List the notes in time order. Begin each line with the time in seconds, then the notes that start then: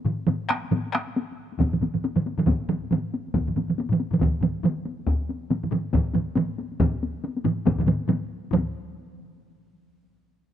0.05 taiko low-mid, taiko mid
0.19 taiko high
0.27 taiko low-mid, taiko mid, taiko high
0.49 taiko rim, taiko high
0.65 taiko high
0.71 taiko low-mid, taiko mid, taiko high
0.86 taiko high
0.93 taiko rim
0.95 taiko rim, taiko high
1.08 taiko high
1.17 taiko high
1.31 taiko high
1.52 taiko high
1.58 taiko, taiko low-mid, taiko mid, taiko high
1.72 taiko low-mid, taiko mid, taiko high
1.81 taiko low-mid, taiko mid, taiko high
1.94 taiko low-mid, taiko mid, taiko high
2.05 taiko high
2.16 taiko low-mid, taiko mid
2.26 taiko high
2.38 taiko low-mid, taiko mid, taiko high
2.46 taiko, taiko low-mid, taiko mid, taiko high
2.61 taiko high
2.69 taiko low-mid, taiko mid, taiko high
2.84 taiko high
2.91 taiko low-mid, taiko mid, taiko high
3.14 taiko high
3.27 taiko high
3.34 taiko, taiko low-mid, taiko mid, taiko high
3.47 taiko low-mid, taiko mid, taiko high
3.56 taiko low-mid, taiko mid, taiko high
3.68 taiko low-mid, taiko mid, taiko high
3.78 taiko high
3.89 taiko low-mid, taiko mid
4.00 taiko high
4.11 taiko low-mid, taiko mid, taiko high
4.20 taiko, taiko low-mid, taiko mid, taiko high
4.35 taiko high
4.41 taiko low-mid, taiko mid, taiko high
4.56 taiko high
4.63 taiko low-mid, taiko mid, taiko high
4.78 taiko high
4.86 taiko high
4.99 taiko high
5.07 taiko, taiko high
5.20 taiko high
5.29 taiko high
5.42 taiko high
5.50 taiko low-mid, taiko mid, taiko high
5.63 taiko low-mid, taiko mid
5.71 taiko low-mid, taiko mid, taiko high
5.85 taiko high
5.93 taiko, taiko low-mid, taiko mid, taiko high
6.06 taiko high
6.14 taiko low-mid, taiko mid, taiko high
6.28 taiko high
6.36 taiko low-mid, taiko mid, taiko high
6.49 taiko high
6.58 taiko high
6.72 taiko high
6.80 taiko, taiko low-mid, taiko mid, taiko high
6.94 taiko high
7.03 taiko high
7.15 taiko high
7.24 taiko high
7.37 taiko high
7.44 taiko low-mid, taiko mid, taiko high
7.58 taiko high
7.65 taiko, taiko low-mid, taiko mid, taiko high
7.79 taiko low-mid, taiko mid, taiko high
7.86 taiko low-mid, taiko mid, taiko high
8.00 taiko high
8.08 taiko low-mid, taiko mid, taiko high
8.22 taiko high
8.44 taiko high
8.51 taiko, taiko low-mid, taiko mid, taiko high